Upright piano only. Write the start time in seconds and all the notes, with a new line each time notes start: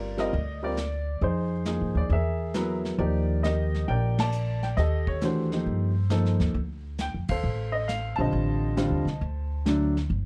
Already playing: G3 C4 F4 A#4 D5
0.17 G3 C4 F4 A#4 D#5
0.63 G3 C4 F4 A#4 D5
1.22 D#4 G#4 C5
1.66 F3 A#3 D#4 G#4
1.97 D5
2.12 G#4 A#4 E5
2.54 F#3 B3 E4 A#4
2.98 F3 A#3 D#4 G4 A#4 D5
3.43 G4 A#4 D#5
3.88 A#4 D5 G5
4.20 D5 A5
4.63 G5
4.77 G4 A4 D#5
5.08 C#5
5.21 E3 A3 D4 F#4 A4 C5
5.25 G4
5.52 F3 A#3 D#4 G4
6.10 F3 A#3 D#4 A4
7.01 G5
7.29 A4 C5 F5
7.72 D#5
7.88 F5
8.16 D3 G3 C4 F4 A5
8.20 C5 D#5
8.77 D3 G3 C4 F4
9.66 D3 F#3 A3 D4